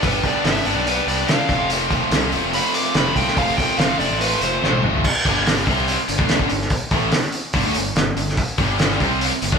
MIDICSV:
0, 0, Header, 1, 8, 480
1, 0, Start_track
1, 0, Tempo, 417537
1, 36, Time_signature, 4, 2, 24, 8
1, 11021, End_track
2, 0, Start_track
2, 0, Title_t, "Lead electric guitar"
2, 0, Program_c, 0, 29
2, 49, Note_on_c, 0, 71, 76
2, 275, Note_off_c, 0, 71, 0
2, 301, Note_on_c, 0, 74, 82
2, 515, Note_off_c, 0, 74, 0
2, 520, Note_on_c, 0, 76, 92
2, 750, Note_off_c, 0, 76, 0
2, 761, Note_on_c, 0, 74, 89
2, 991, Note_off_c, 0, 74, 0
2, 1013, Note_on_c, 0, 71, 77
2, 1237, Note_off_c, 0, 71, 0
2, 1239, Note_on_c, 0, 74, 83
2, 1470, Note_off_c, 0, 74, 0
2, 1477, Note_on_c, 0, 77, 89
2, 1942, Note_off_c, 0, 77, 0
2, 2929, Note_on_c, 0, 83, 106
2, 3155, Note_off_c, 0, 83, 0
2, 3161, Note_on_c, 0, 86, 83
2, 3391, Note_off_c, 0, 86, 0
2, 3417, Note_on_c, 0, 83, 80
2, 3639, Note_off_c, 0, 83, 0
2, 3642, Note_on_c, 0, 79, 85
2, 3872, Note_off_c, 0, 79, 0
2, 3887, Note_on_c, 0, 77, 84
2, 4099, Note_on_c, 0, 79, 84
2, 4114, Note_off_c, 0, 77, 0
2, 4339, Note_on_c, 0, 77, 88
2, 4340, Note_off_c, 0, 79, 0
2, 4580, Note_off_c, 0, 77, 0
2, 4588, Note_on_c, 0, 74, 88
2, 4824, Note_off_c, 0, 74, 0
2, 4830, Note_on_c, 0, 71, 89
2, 5065, Note_off_c, 0, 71, 0
2, 5085, Note_on_c, 0, 72, 92
2, 5546, Note_off_c, 0, 72, 0
2, 11021, End_track
3, 0, Start_track
3, 0, Title_t, "Overdriven electric guitar"
3, 0, Program_c, 1, 29
3, 280, Note_on_c, 1, 62, 79
3, 299, Note_on_c, 1, 59, 63
3, 315, Note_on_c, 1, 55, 65
3, 510, Note_off_c, 1, 55, 0
3, 516, Note_off_c, 1, 59, 0
3, 529, Note_off_c, 1, 62, 0
3, 1480, Note_on_c, 1, 50, 68
3, 1703, Note_off_c, 1, 50, 0
3, 2179, Note_on_c, 1, 60, 81
3, 2192, Note_on_c, 1, 57, 66
3, 2206, Note_on_c, 1, 53, 69
3, 2434, Note_off_c, 1, 53, 0
3, 2444, Note_off_c, 1, 57, 0
3, 2449, Note_off_c, 1, 60, 0
3, 3391, Note_on_c, 1, 48, 72
3, 3865, Note_off_c, 1, 48, 0
3, 4132, Note_on_c, 1, 60, 75
3, 4138, Note_on_c, 1, 57, 71
3, 4151, Note_on_c, 1, 53, 63
3, 4355, Note_off_c, 1, 53, 0
3, 4362, Note_off_c, 1, 57, 0
3, 4373, Note_off_c, 1, 60, 0
3, 5320, Note_on_c, 1, 48, 77
3, 5783, Note_off_c, 1, 48, 0
3, 11021, End_track
4, 0, Start_track
4, 0, Title_t, "Overdriven electric guitar"
4, 0, Program_c, 2, 29
4, 42, Note_on_c, 2, 43, 94
4, 51, Note_on_c, 2, 50, 95
4, 57, Note_on_c, 2, 55, 86
4, 57, Note_on_c, 2, 59, 88
4, 57, Note_on_c, 2, 62, 104
4, 70, Note_on_c, 2, 67, 96
4, 491, Note_off_c, 2, 43, 0
4, 500, Note_off_c, 2, 50, 0
4, 503, Note_off_c, 2, 55, 0
4, 505, Note_on_c, 2, 43, 94
4, 509, Note_off_c, 2, 59, 0
4, 510, Note_off_c, 2, 62, 0
4, 513, Note_on_c, 2, 50, 88
4, 517, Note_on_c, 2, 55, 84
4, 522, Note_off_c, 2, 67, 0
4, 523, Note_on_c, 2, 59, 92
4, 523, Note_on_c, 2, 62, 97
4, 536, Note_on_c, 2, 67, 111
4, 728, Note_off_c, 2, 67, 0
4, 739, Note_off_c, 2, 62, 0
4, 742, Note_on_c, 2, 67, 69
4, 747, Note_off_c, 2, 59, 0
4, 752, Note_off_c, 2, 55, 0
4, 753, Note_on_c, 2, 62, 63
4, 761, Note_on_c, 2, 59, 62
4, 766, Note_on_c, 2, 55, 53
4, 969, Note_off_c, 2, 55, 0
4, 977, Note_off_c, 2, 59, 0
4, 983, Note_on_c, 2, 55, 74
4, 985, Note_off_c, 2, 62, 0
4, 990, Note_off_c, 2, 43, 0
4, 991, Note_on_c, 2, 59, 69
4, 994, Note_off_c, 2, 50, 0
4, 995, Note_off_c, 2, 67, 0
4, 998, Note_on_c, 2, 62, 74
4, 1009, Note_on_c, 2, 67, 81
4, 1459, Note_off_c, 2, 55, 0
4, 1468, Note_off_c, 2, 59, 0
4, 1473, Note_on_c, 2, 55, 67
4, 1480, Note_off_c, 2, 62, 0
4, 1482, Note_on_c, 2, 59, 72
4, 1484, Note_off_c, 2, 67, 0
4, 1493, Note_on_c, 2, 62, 76
4, 1497, Note_on_c, 2, 67, 64
4, 1700, Note_off_c, 2, 55, 0
4, 1703, Note_off_c, 2, 67, 0
4, 1704, Note_off_c, 2, 59, 0
4, 1708, Note_on_c, 2, 65, 94
4, 1710, Note_off_c, 2, 62, 0
4, 1722, Note_on_c, 2, 60, 80
4, 1723, Note_on_c, 2, 57, 83
4, 1733, Note_on_c, 2, 48, 76
4, 1735, Note_on_c, 2, 53, 74
4, 1736, Note_on_c, 2, 41, 66
4, 1948, Note_off_c, 2, 48, 0
4, 1952, Note_off_c, 2, 41, 0
4, 1956, Note_on_c, 2, 41, 85
4, 1962, Note_off_c, 2, 53, 0
4, 1962, Note_on_c, 2, 48, 84
4, 1967, Note_on_c, 2, 53, 89
4, 1970, Note_off_c, 2, 57, 0
4, 1975, Note_on_c, 2, 57, 103
4, 1976, Note_off_c, 2, 60, 0
4, 1976, Note_off_c, 2, 65, 0
4, 1980, Note_on_c, 2, 65, 107
4, 1981, Note_on_c, 2, 60, 102
4, 2424, Note_off_c, 2, 48, 0
4, 2430, Note_off_c, 2, 41, 0
4, 2435, Note_on_c, 2, 41, 87
4, 2437, Note_on_c, 2, 48, 97
4, 2441, Note_off_c, 2, 57, 0
4, 2445, Note_off_c, 2, 53, 0
4, 2446, Note_on_c, 2, 57, 96
4, 2449, Note_on_c, 2, 53, 94
4, 2455, Note_off_c, 2, 60, 0
4, 2455, Note_off_c, 2, 65, 0
4, 2459, Note_on_c, 2, 60, 105
4, 2460, Note_on_c, 2, 65, 102
4, 2671, Note_off_c, 2, 65, 0
4, 2676, Note_on_c, 2, 65, 70
4, 2678, Note_off_c, 2, 60, 0
4, 2683, Note_on_c, 2, 60, 63
4, 2689, Note_off_c, 2, 57, 0
4, 2693, Note_on_c, 2, 57, 60
4, 2694, Note_off_c, 2, 53, 0
4, 2698, Note_on_c, 2, 53, 62
4, 2890, Note_off_c, 2, 53, 0
4, 2900, Note_off_c, 2, 57, 0
4, 2904, Note_on_c, 2, 53, 82
4, 2914, Note_off_c, 2, 60, 0
4, 2914, Note_on_c, 2, 57, 77
4, 2915, Note_off_c, 2, 65, 0
4, 2916, Note_off_c, 2, 48, 0
4, 2928, Note_on_c, 2, 60, 80
4, 2929, Note_on_c, 2, 65, 83
4, 3382, Note_off_c, 2, 53, 0
4, 3386, Note_off_c, 2, 57, 0
4, 3396, Note_on_c, 2, 53, 62
4, 3400, Note_on_c, 2, 57, 65
4, 3404, Note_off_c, 2, 60, 0
4, 3404, Note_off_c, 2, 65, 0
4, 3417, Note_on_c, 2, 60, 71
4, 3417, Note_on_c, 2, 65, 71
4, 3629, Note_off_c, 2, 65, 0
4, 3631, Note_off_c, 2, 60, 0
4, 3643, Note_on_c, 2, 65, 71
4, 3644, Note_on_c, 2, 60, 60
4, 3647, Note_off_c, 2, 57, 0
4, 3654, Note_off_c, 2, 53, 0
4, 3661, Note_on_c, 2, 57, 61
4, 3667, Note_on_c, 2, 53, 61
4, 3860, Note_off_c, 2, 41, 0
4, 3864, Note_off_c, 2, 53, 0
4, 3864, Note_on_c, 2, 41, 94
4, 3866, Note_off_c, 2, 57, 0
4, 3867, Note_off_c, 2, 60, 0
4, 3873, Note_on_c, 2, 48, 96
4, 3878, Note_on_c, 2, 53, 92
4, 3879, Note_on_c, 2, 57, 101
4, 3880, Note_off_c, 2, 65, 0
4, 3880, Note_on_c, 2, 60, 107
4, 3894, Note_on_c, 2, 65, 93
4, 4333, Note_off_c, 2, 41, 0
4, 4342, Note_off_c, 2, 48, 0
4, 4347, Note_on_c, 2, 41, 93
4, 4348, Note_off_c, 2, 57, 0
4, 4350, Note_off_c, 2, 53, 0
4, 4355, Note_off_c, 2, 60, 0
4, 4356, Note_on_c, 2, 48, 89
4, 4361, Note_off_c, 2, 65, 0
4, 4362, Note_on_c, 2, 57, 104
4, 4363, Note_on_c, 2, 53, 99
4, 4369, Note_on_c, 2, 60, 110
4, 4375, Note_on_c, 2, 65, 99
4, 4577, Note_off_c, 2, 65, 0
4, 4586, Note_off_c, 2, 60, 0
4, 4591, Note_on_c, 2, 65, 65
4, 4597, Note_off_c, 2, 53, 0
4, 4599, Note_off_c, 2, 57, 0
4, 4600, Note_on_c, 2, 60, 63
4, 4610, Note_on_c, 2, 53, 54
4, 4612, Note_on_c, 2, 57, 57
4, 4805, Note_off_c, 2, 53, 0
4, 4816, Note_off_c, 2, 57, 0
4, 4819, Note_on_c, 2, 53, 71
4, 4822, Note_off_c, 2, 60, 0
4, 4827, Note_off_c, 2, 65, 0
4, 4830, Note_on_c, 2, 57, 82
4, 4831, Note_off_c, 2, 41, 0
4, 4836, Note_off_c, 2, 48, 0
4, 4836, Note_on_c, 2, 60, 74
4, 4841, Note_on_c, 2, 65, 81
4, 5302, Note_off_c, 2, 53, 0
4, 5308, Note_off_c, 2, 57, 0
4, 5316, Note_on_c, 2, 53, 70
4, 5317, Note_off_c, 2, 60, 0
4, 5317, Note_off_c, 2, 65, 0
4, 5322, Note_on_c, 2, 57, 69
4, 5330, Note_on_c, 2, 60, 71
4, 5331, Note_on_c, 2, 65, 69
4, 5535, Note_off_c, 2, 65, 0
4, 5548, Note_on_c, 2, 65, 77
4, 5554, Note_off_c, 2, 60, 0
4, 5561, Note_off_c, 2, 57, 0
4, 5565, Note_off_c, 2, 53, 0
4, 5568, Note_on_c, 2, 60, 64
4, 5574, Note_on_c, 2, 57, 66
4, 5578, Note_on_c, 2, 53, 59
4, 5777, Note_off_c, 2, 65, 0
4, 5787, Note_off_c, 2, 60, 0
4, 5790, Note_off_c, 2, 57, 0
4, 5792, Note_off_c, 2, 53, 0
4, 6039, Note_on_c, 2, 43, 87
4, 6043, Note_on_c, 2, 50, 89
4, 6050, Note_on_c, 2, 55, 84
4, 6510, Note_off_c, 2, 43, 0
4, 6511, Note_off_c, 2, 50, 0
4, 6515, Note_off_c, 2, 55, 0
4, 6529, Note_on_c, 2, 48, 86
4, 6536, Note_on_c, 2, 60, 94
4, 6538, Note_on_c, 2, 55, 84
4, 6874, Note_off_c, 2, 48, 0
4, 6878, Note_off_c, 2, 60, 0
4, 6879, Note_off_c, 2, 55, 0
4, 6997, Note_on_c, 2, 43, 68
4, 7007, Note_on_c, 2, 50, 78
4, 7110, Note_off_c, 2, 50, 0
4, 7116, Note_off_c, 2, 43, 0
4, 7124, Note_on_c, 2, 50, 94
4, 7133, Note_on_c, 2, 57, 94
4, 7139, Note_on_c, 2, 62, 100
4, 7352, Note_off_c, 2, 50, 0
4, 7357, Note_off_c, 2, 57, 0
4, 7360, Note_off_c, 2, 62, 0
4, 7370, Note_on_c, 2, 43, 82
4, 7370, Note_on_c, 2, 50, 101
4, 7475, Note_off_c, 2, 43, 0
4, 7475, Note_off_c, 2, 50, 0
4, 7495, Note_on_c, 2, 43, 66
4, 7498, Note_on_c, 2, 50, 72
4, 7677, Note_off_c, 2, 43, 0
4, 7678, Note_off_c, 2, 50, 0
4, 7961, Note_on_c, 2, 45, 88
4, 7964, Note_on_c, 2, 52, 86
4, 7968, Note_on_c, 2, 57, 94
4, 8191, Note_off_c, 2, 45, 0
4, 8192, Note_off_c, 2, 52, 0
4, 8194, Note_off_c, 2, 57, 0
4, 8680, Note_on_c, 2, 43, 94
4, 8692, Note_on_c, 2, 50, 101
4, 8778, Note_off_c, 2, 50, 0
4, 8790, Note_off_c, 2, 43, 0
4, 8792, Note_on_c, 2, 50, 88
4, 8800, Note_on_c, 2, 57, 97
4, 8906, Note_off_c, 2, 50, 0
4, 8910, Note_off_c, 2, 57, 0
4, 8920, Note_on_c, 2, 43, 61
4, 8928, Note_on_c, 2, 50, 70
4, 9109, Note_off_c, 2, 43, 0
4, 9113, Note_off_c, 2, 50, 0
4, 9153, Note_on_c, 2, 43, 63
4, 9162, Note_on_c, 2, 50, 67
4, 9345, Note_off_c, 2, 43, 0
4, 9350, Note_off_c, 2, 50, 0
4, 9391, Note_on_c, 2, 43, 61
4, 9392, Note_on_c, 2, 50, 80
4, 9585, Note_off_c, 2, 43, 0
4, 9585, Note_off_c, 2, 50, 0
4, 9874, Note_on_c, 2, 43, 75
4, 9878, Note_on_c, 2, 50, 88
4, 9882, Note_on_c, 2, 55, 93
4, 10347, Note_off_c, 2, 43, 0
4, 10349, Note_off_c, 2, 50, 0
4, 10351, Note_off_c, 2, 55, 0
4, 10357, Note_on_c, 2, 48, 89
4, 10367, Note_on_c, 2, 55, 94
4, 10371, Note_on_c, 2, 60, 91
4, 10708, Note_off_c, 2, 48, 0
4, 10713, Note_off_c, 2, 55, 0
4, 10715, Note_off_c, 2, 60, 0
4, 10837, Note_on_c, 2, 43, 66
4, 10845, Note_on_c, 2, 50, 65
4, 10955, Note_off_c, 2, 43, 0
4, 10959, Note_off_c, 2, 50, 0
4, 10972, Note_on_c, 2, 50, 92
4, 10978, Note_on_c, 2, 62, 99
4, 10979, Note_on_c, 2, 57, 93
4, 11021, Note_off_c, 2, 50, 0
4, 11021, Note_off_c, 2, 57, 0
4, 11021, Note_off_c, 2, 62, 0
4, 11021, End_track
5, 0, Start_track
5, 0, Title_t, "Fingered electric bass"
5, 0, Program_c, 3, 33
5, 32, Note_on_c, 3, 31, 92
5, 222, Note_off_c, 3, 31, 0
5, 507, Note_on_c, 3, 31, 82
5, 699, Note_off_c, 3, 31, 0
5, 747, Note_on_c, 3, 31, 74
5, 844, Note_off_c, 3, 31, 0
5, 862, Note_on_c, 3, 35, 92
5, 1150, Note_off_c, 3, 35, 0
5, 1226, Note_on_c, 3, 36, 95
5, 1418, Note_off_c, 3, 36, 0
5, 1719, Note_on_c, 3, 29, 92
5, 2284, Note_off_c, 3, 29, 0
5, 2424, Note_on_c, 3, 36, 97
5, 2672, Note_on_c, 3, 29, 79
5, 2689, Note_off_c, 3, 36, 0
5, 2768, Note_off_c, 3, 29, 0
5, 2800, Note_on_c, 3, 29, 79
5, 2987, Note_off_c, 3, 29, 0
5, 3390, Note_on_c, 3, 29, 86
5, 3581, Note_off_c, 3, 29, 0
5, 3628, Note_on_c, 3, 36, 82
5, 3725, Note_off_c, 3, 36, 0
5, 3870, Note_on_c, 3, 29, 94
5, 4060, Note_off_c, 3, 29, 0
5, 4348, Note_on_c, 3, 29, 83
5, 4539, Note_off_c, 3, 29, 0
5, 4584, Note_on_c, 3, 29, 83
5, 4683, Note_off_c, 3, 29, 0
5, 4709, Note_on_c, 3, 33, 88
5, 4994, Note_off_c, 3, 33, 0
5, 5070, Note_on_c, 3, 29, 94
5, 5261, Note_off_c, 3, 29, 0
5, 5313, Note_on_c, 3, 33, 78
5, 5530, Note_off_c, 3, 33, 0
5, 5552, Note_on_c, 3, 31, 78
5, 5769, Note_off_c, 3, 31, 0
5, 6035, Note_on_c, 3, 31, 89
5, 6481, Note_off_c, 3, 31, 0
5, 6515, Note_on_c, 3, 36, 86
5, 6850, Note_off_c, 3, 36, 0
5, 6994, Note_on_c, 3, 31, 76
5, 7106, Note_off_c, 3, 31, 0
5, 7112, Note_on_c, 3, 38, 85
5, 7336, Note_off_c, 3, 38, 0
5, 7356, Note_on_c, 3, 31, 88
5, 7467, Note_off_c, 3, 31, 0
5, 7480, Note_on_c, 3, 31, 79
5, 7701, Note_off_c, 3, 31, 0
5, 7944, Note_on_c, 3, 33, 91
5, 8172, Note_off_c, 3, 33, 0
5, 8665, Note_on_c, 3, 31, 100
5, 8772, Note_off_c, 3, 31, 0
5, 8779, Note_on_c, 3, 38, 96
5, 8894, Note_off_c, 3, 38, 0
5, 8901, Note_on_c, 3, 31, 77
5, 9130, Note_off_c, 3, 31, 0
5, 9138, Note_on_c, 3, 31, 80
5, 9369, Note_off_c, 3, 31, 0
5, 9379, Note_on_c, 3, 31, 76
5, 9609, Note_off_c, 3, 31, 0
5, 9861, Note_on_c, 3, 31, 98
5, 10314, Note_off_c, 3, 31, 0
5, 10354, Note_on_c, 3, 36, 89
5, 10688, Note_off_c, 3, 36, 0
5, 10828, Note_on_c, 3, 31, 81
5, 10942, Note_off_c, 3, 31, 0
5, 10948, Note_on_c, 3, 38, 91
5, 11021, Note_off_c, 3, 38, 0
5, 11021, End_track
6, 0, Start_track
6, 0, Title_t, "Muted fingered electric bass strokes"
6, 6881, Note_on_c, 9, 29, 43
6, 6996, Note_off_c, 9, 29, 0
6, 10715, Note_on_c, 9, 29, 42
6, 10830, Note_off_c, 9, 29, 0
6, 11021, End_track
7, 0, Start_track
7, 0, Title_t, "Muted overdriven electric guitar strokes"
7, 6889, Note_on_c, 9, 29, 58
7, 7004, Note_off_c, 9, 29, 0
7, 10728, Note_on_c, 9, 29, 58
7, 10843, Note_off_c, 9, 29, 0
7, 11021, End_track
8, 0, Start_track
8, 0, Title_t, "Drums"
8, 34, Note_on_c, 9, 36, 110
8, 36, Note_on_c, 9, 46, 77
8, 149, Note_off_c, 9, 36, 0
8, 150, Note_off_c, 9, 46, 0
8, 271, Note_on_c, 9, 36, 79
8, 272, Note_on_c, 9, 46, 49
8, 386, Note_off_c, 9, 36, 0
8, 387, Note_off_c, 9, 46, 0
8, 513, Note_on_c, 9, 46, 70
8, 522, Note_on_c, 9, 38, 104
8, 628, Note_off_c, 9, 46, 0
8, 637, Note_off_c, 9, 38, 0
8, 643, Note_on_c, 9, 38, 32
8, 753, Note_on_c, 9, 46, 50
8, 758, Note_off_c, 9, 38, 0
8, 868, Note_off_c, 9, 46, 0
8, 1000, Note_on_c, 9, 46, 71
8, 1115, Note_off_c, 9, 46, 0
8, 1244, Note_on_c, 9, 46, 55
8, 1359, Note_off_c, 9, 46, 0
8, 1477, Note_on_c, 9, 46, 65
8, 1486, Note_on_c, 9, 38, 108
8, 1592, Note_off_c, 9, 46, 0
8, 1601, Note_off_c, 9, 38, 0
8, 1713, Note_on_c, 9, 36, 104
8, 1719, Note_on_c, 9, 46, 49
8, 1828, Note_off_c, 9, 36, 0
8, 1834, Note_off_c, 9, 46, 0
8, 1954, Note_on_c, 9, 46, 69
8, 2068, Note_off_c, 9, 46, 0
8, 2190, Note_on_c, 9, 36, 88
8, 2192, Note_on_c, 9, 46, 48
8, 2305, Note_off_c, 9, 36, 0
8, 2307, Note_off_c, 9, 46, 0
8, 2432, Note_on_c, 9, 46, 68
8, 2441, Note_on_c, 9, 38, 105
8, 2547, Note_off_c, 9, 46, 0
8, 2556, Note_off_c, 9, 38, 0
8, 2669, Note_on_c, 9, 46, 50
8, 2784, Note_off_c, 9, 46, 0
8, 2912, Note_on_c, 9, 46, 75
8, 3027, Note_off_c, 9, 46, 0
8, 3153, Note_on_c, 9, 46, 63
8, 3268, Note_off_c, 9, 46, 0
8, 3384, Note_on_c, 9, 46, 76
8, 3394, Note_on_c, 9, 38, 107
8, 3499, Note_off_c, 9, 46, 0
8, 3509, Note_off_c, 9, 38, 0
8, 3631, Note_on_c, 9, 36, 82
8, 3637, Note_on_c, 9, 46, 59
8, 3746, Note_off_c, 9, 36, 0
8, 3752, Note_off_c, 9, 46, 0
8, 3764, Note_on_c, 9, 38, 32
8, 3873, Note_on_c, 9, 46, 77
8, 3874, Note_on_c, 9, 36, 108
8, 3879, Note_off_c, 9, 38, 0
8, 3988, Note_off_c, 9, 46, 0
8, 3989, Note_off_c, 9, 36, 0
8, 4115, Note_on_c, 9, 36, 84
8, 4117, Note_on_c, 9, 46, 60
8, 4230, Note_off_c, 9, 36, 0
8, 4232, Note_off_c, 9, 46, 0
8, 4354, Note_on_c, 9, 46, 75
8, 4364, Note_on_c, 9, 38, 108
8, 4469, Note_off_c, 9, 46, 0
8, 4478, Note_off_c, 9, 38, 0
8, 4601, Note_on_c, 9, 46, 52
8, 4716, Note_off_c, 9, 46, 0
8, 4838, Note_on_c, 9, 46, 75
8, 4953, Note_off_c, 9, 46, 0
8, 5076, Note_on_c, 9, 46, 57
8, 5191, Note_off_c, 9, 46, 0
8, 5328, Note_on_c, 9, 38, 56
8, 5436, Note_on_c, 9, 48, 67
8, 5443, Note_off_c, 9, 38, 0
8, 5550, Note_off_c, 9, 48, 0
8, 5555, Note_on_c, 9, 45, 86
8, 5669, Note_off_c, 9, 45, 0
8, 5678, Note_on_c, 9, 43, 81
8, 5793, Note_off_c, 9, 43, 0
8, 5799, Note_on_c, 9, 36, 98
8, 5800, Note_on_c, 9, 49, 115
8, 5914, Note_off_c, 9, 36, 0
8, 5915, Note_off_c, 9, 49, 0
8, 6038, Note_on_c, 9, 36, 98
8, 6042, Note_on_c, 9, 46, 57
8, 6153, Note_off_c, 9, 36, 0
8, 6157, Note_off_c, 9, 46, 0
8, 6284, Note_on_c, 9, 46, 81
8, 6293, Note_on_c, 9, 38, 105
8, 6399, Note_off_c, 9, 46, 0
8, 6408, Note_off_c, 9, 38, 0
8, 6409, Note_on_c, 9, 38, 33
8, 6519, Note_on_c, 9, 36, 93
8, 6524, Note_off_c, 9, 38, 0
8, 6525, Note_on_c, 9, 46, 53
8, 6634, Note_off_c, 9, 36, 0
8, 6640, Note_off_c, 9, 46, 0
8, 6759, Note_on_c, 9, 46, 75
8, 6874, Note_off_c, 9, 46, 0
8, 6996, Note_on_c, 9, 46, 66
8, 7111, Note_off_c, 9, 46, 0
8, 7115, Note_on_c, 9, 36, 106
8, 7229, Note_on_c, 9, 46, 82
8, 7230, Note_off_c, 9, 36, 0
8, 7238, Note_on_c, 9, 38, 108
8, 7344, Note_off_c, 9, 46, 0
8, 7351, Note_on_c, 9, 36, 106
8, 7353, Note_off_c, 9, 38, 0
8, 7466, Note_off_c, 9, 36, 0
8, 7468, Note_on_c, 9, 46, 61
8, 7583, Note_off_c, 9, 46, 0
8, 7599, Note_on_c, 9, 38, 31
8, 7702, Note_on_c, 9, 46, 86
8, 7708, Note_on_c, 9, 36, 105
8, 7714, Note_off_c, 9, 38, 0
8, 7817, Note_off_c, 9, 46, 0
8, 7823, Note_off_c, 9, 36, 0
8, 7943, Note_on_c, 9, 46, 56
8, 7947, Note_on_c, 9, 36, 108
8, 8058, Note_off_c, 9, 46, 0
8, 8062, Note_off_c, 9, 36, 0
8, 8182, Note_on_c, 9, 46, 79
8, 8191, Note_on_c, 9, 38, 102
8, 8297, Note_off_c, 9, 46, 0
8, 8306, Note_off_c, 9, 38, 0
8, 8309, Note_on_c, 9, 38, 30
8, 8420, Note_on_c, 9, 46, 60
8, 8424, Note_off_c, 9, 38, 0
8, 8535, Note_off_c, 9, 46, 0
8, 8657, Note_on_c, 9, 46, 74
8, 8666, Note_on_c, 9, 36, 105
8, 8772, Note_off_c, 9, 46, 0
8, 8781, Note_off_c, 9, 36, 0
8, 8904, Note_on_c, 9, 46, 62
8, 9019, Note_off_c, 9, 46, 0
8, 9150, Note_on_c, 9, 46, 74
8, 9159, Note_on_c, 9, 38, 109
8, 9265, Note_off_c, 9, 46, 0
8, 9274, Note_off_c, 9, 38, 0
8, 9389, Note_on_c, 9, 46, 57
8, 9504, Note_off_c, 9, 46, 0
8, 9521, Note_on_c, 9, 38, 32
8, 9626, Note_on_c, 9, 46, 79
8, 9628, Note_on_c, 9, 36, 107
8, 9636, Note_off_c, 9, 38, 0
8, 9741, Note_off_c, 9, 46, 0
8, 9743, Note_off_c, 9, 36, 0
8, 9863, Note_on_c, 9, 46, 53
8, 9867, Note_on_c, 9, 36, 102
8, 9978, Note_off_c, 9, 46, 0
8, 9982, Note_off_c, 9, 36, 0
8, 10107, Note_on_c, 9, 46, 75
8, 10116, Note_on_c, 9, 38, 108
8, 10222, Note_off_c, 9, 46, 0
8, 10231, Note_off_c, 9, 38, 0
8, 10243, Note_on_c, 9, 38, 32
8, 10350, Note_on_c, 9, 36, 98
8, 10350, Note_on_c, 9, 46, 53
8, 10358, Note_off_c, 9, 38, 0
8, 10465, Note_off_c, 9, 36, 0
8, 10465, Note_off_c, 9, 46, 0
8, 10591, Note_on_c, 9, 46, 84
8, 10706, Note_off_c, 9, 46, 0
8, 10827, Note_on_c, 9, 46, 64
8, 10942, Note_off_c, 9, 46, 0
8, 10949, Note_on_c, 9, 36, 109
8, 11021, Note_off_c, 9, 36, 0
8, 11021, End_track
0, 0, End_of_file